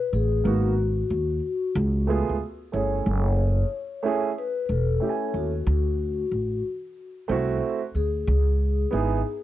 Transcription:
0.13 0.41 A1 medium
0.13 0.47 G#4 medium
0.44 1.01 G#1 loud
0.44 0.70 A#3 medium
0.44 0.71 B3 medium
0.44 0.71 D#4 medium
0.44 0.72 F#4 medium
0.44 1.72 F#4 medium
1.10 1.38 D#2 medium
1.75 2.22 C#2 loud
2.07 2.33 A3 medium
2.07 2.34 B3 medium
2.07 2.34 F4 medium
2.07 2.35 G#4 medium
2.29 2.39 C#2 medium
2.72 3.02 G1 medium
2.72 3.66 A3 medium
2.72 3.67 C#4 medium
2.72 3.67 E4 medium
2.72 3.68 G#4 medium
2.72 4.33 C#5 medium
3.06 3.63 F#1 medium
4.03 4.29 A3 medium
4.03 4.30 C#4 medium
4.03 4.30 E4 medium
4.03 4.31 G#4 medium
4.38 4.65 B4 medium
4.66 4.97 E1 medium
4.66 4.70 B4 medium
4.71 5.37 A4 medium
5.00 5.50 A3 medium
5.00 5.51 C#4 medium
5.00 5.51 E4 medium
5.00 5.11 G4 medium
5.09 5.55 G#5 medium
5.34 5.62 D#2 medium
5.34 6.61 F#4 medium
5.67 6.23 D2 loud
6.32 6.60 A1 medium
7.28 7.58 C2 medium
7.28 7.79 A3 medium
7.28 7.79 C4 medium
7.28 7.80 E4 medium
7.28 7.80 F#4 medium
7.95 8.23 D2 medium
7.95 9.43 G#4 medium
8.27 8.84 C#2 loud
8.91 9.21 G#1 medium
8.91 9.18 B3 medium
8.91 9.18 D#4 medium
8.91 9.19 E4 medium
8.91 9.19 G#4 medium

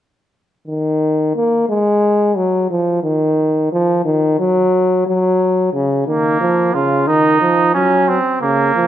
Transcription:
0.68 1.32 D#3 medium
1.35 1.69 A#3 medium
1.69 2.38 G#3 medium
2.37 2.70 F#3 medium
2.70 3.03 F3 medium
3.03 3.70 D#3 medium
3.72 4.04 F3 medium
4.05 4.38 D#3 medium
4.39 5.05 F#3 medium
5.06 5.72 F#3 medium
5.73 6.06 C#3 medium
6.07 6.40 D#3 soft
6.07 6.76 A#3 medium
6.41 6.73 F3 medium
6.74 7.09 C#3 medium
6.74 7.07 F4 medium
7.07 7.41 D#3 medium
7.07 7.73 D#4 medium
7.41 7.74 F3 medium
7.74 8.18 F#3 medium
7.74 8.10 C#4 medium
8.08 8.40 C4 medium
8.41 8.73 C#3 medium
8.41 8.87 A#3 medium
8.75 8.87 F3 medium

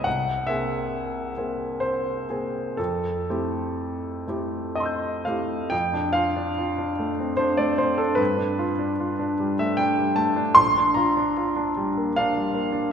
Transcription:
0.04 0.46 C2 soft
0.04 0.47 F#5 medium
0.47 1.31 A#3 soft
0.47 1.31 C4 soft
0.47 1.32 G#4 soft
0.47 1.80 E5 medium
1.38 2.25 A#3 soft
1.38 2.25 C4 soft
1.38 2.26 G#4 soft
1.80 2.78 C5 medium
2.29 2.75 A#3 soft
2.29 2.74 C4 soft
2.29 2.75 G#4 soft
2.77 3.27 F2 soft
2.77 4.76 A4 medium
3.29 4.24 A3 soft
3.29 4.24 C4 soft
3.29 4.25 E4 soft
3.29 4.25 G4 soft
4.27 5.22 A3 soft
4.27 5.23 C4 soft
4.27 5.23 E4 soft
4.27 5.23 G4 soft
4.75 5.26 D#5 medium
4.75 5.69 A5 soft
4.80 5.70 C6 soft
4.80 5.72 E6 soft
4.86 5.73 G6 soft
5.25 5.69 A3 soft
5.25 5.69 C4 soft
5.25 5.69 E4 soft
5.25 5.69 G4 soft
5.25 5.72 F5 medium
5.70 8.15 F2 soft
5.70 6.14 G5 medium
5.94 6.28 D4 soft
6.13 6.49 F4 soft
6.13 7.39 F5 medium
6.36 6.70 D4 soft
6.58 6.91 F4 soft
6.78 7.11 D4 soft
6.99 7.32 A3 soft
7.20 7.52 C4 soft
7.37 7.71 D4 soft
7.37 7.58 C5 medium
7.57 7.90 A3 soft
7.57 7.78 D5 medium
7.78 8.11 C4 soft
7.78 7.99 C5 medium
7.98 8.19 D4 soft
7.98 8.18 A4 medium
8.15 10.54 G2 soft
8.15 9.60 B4 medium
8.37 8.71 D4 soft
8.59 8.92 F4 soft
8.79 9.13 D4 soft
9.00 9.33 F4 soft
9.19 9.53 D4 soft
9.40 9.72 G3 soft
9.59 9.91 A3 soft
9.59 9.80 E5 medium
9.77 10.10 D4 soft
9.77 10.17 G5 medium
9.98 10.30 G3 soft
10.16 10.50 A3 soft
10.16 10.57 A5 medium
10.36 10.58 D4 soft
10.55 12.91 A#1 soft
10.55 10.97 C6 medium
10.77 11.11 D4 soft
10.94 11.30 F4 soft
10.94 12.16 A#5 medium
11.17 11.50 D4 soft
11.37 11.70 F4 soft
11.56 11.89 D4 soft
11.77 12.09 G3 soft
11.97 12.29 A#3 soft
12.16 12.49 D4 soft
12.16 12.92 F5 medium
12.37 12.69 G3 soft
12.54 12.87 A#3 soft
12.72 12.92 D4 soft

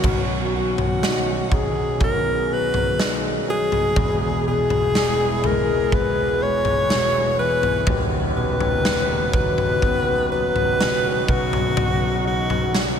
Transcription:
0.00 3.92 B1 medium
0.00 2.00 B2 medium
0.00 3.93 C#4 medium
0.00 0.54 F#4 medium
0.00 1.97 F#4 medium
0.00 kick loud
0.04 7.84 B2 medium
0.04 3.94 D#3 medium
0.04 3.93 F#3 medium
0.04 floor tom loud
0.04 crash medium
0.52 1.51 F#3 soft
0.52 1.55 F#4 medium
0.78 floor tom medium
1.02 2.95 D#4 medium
1.02 snare loud
1.52 2.49 F#3 medium
1.52 2.01 G#4 medium
1.52 kick medium
1.52 floor tom medium
2.00 3.93 B2 medium
2.00 7.84 G#4 medium
2.00 2.54 A#4 medium
2.00 kick medium
2.00 floor tom medium
2.50 3.47 F#3 medium
2.50 3.22 B4 loud
2.74 floor tom medium
2.99 3.93 D#4 medium
2.99 snare loud
3.48 3.95 F#3 medium
3.48 4.43 G#4 loud
3.72 floor tom medium
3.96 7.84 E1 medium
3.96 7.84 E2 medium
3.96 7.84 E3 medium
3.96 7.84 G#3 medium
3.96 7.84 E4 medium
3.96 kick loud
3.96 floor tom loud
4.46 6.38 B2 medium
4.46 5.48 G#4 loud
4.70 floor tom medium
4.95 6.87 E3 medium
4.95 snare loud
5.44 6.41 G#3 medium
5.44 5.96 A#4 loud
5.44 floor tom medium
5.92 7.84 B3 medium
5.92 6.44 B4 loud
5.92 kick medium
5.92 floor tom medium
6.42 7.84 G#3 medium
6.42 7.39 C#5 loud
6.65 floor tom medium
6.90 7.86 B2 medium
6.90 snare loud
7.39 7.86 E3 medium
7.39 8.06 B4 loud
7.63 floor tom medium
7.87 11.25 D#1 medium
7.87 11.25 D#2 medium
7.87 12.99 C#3 medium
7.87 12.99 F#3 medium
7.87 12.99 B3 medium
7.87 12.99 D#4 medium
7.87 12.99 F#4 medium
7.87 kick loud
7.87 floor tom loud
8.36 10.27 B2 medium
8.36 9.30 B4 loud
8.61 floor tom medium
8.83 10.75 D#3 medium
8.83 snare loud
9.32 10.30 F#3 medium
9.32 10.28 B4 loud
9.32 kick loud
9.32 floor tom medium
9.58 floor tom medium
9.82 11.24 B3 medium
9.82 kick medium
9.82 floor tom medium
10.31 11.25 F#3 medium
10.31 11.32 B4 loud
10.56 floor tom medium
10.81 11.27 B2 medium
10.81 snare loud
11.28 12.99 B1 medium
11.28 12.99 B2 medium
11.28 12.27 F#4 loud
11.28 kick loud
11.53 floor tom medium
11.77 12.72 F#3 medium
11.77 floor tom loud
12.25 12.99 D#4 medium
12.25 12.93 F#4 loud
12.50 floor tom medium
12.74 12.99 F#3 medium
12.74 snare loud

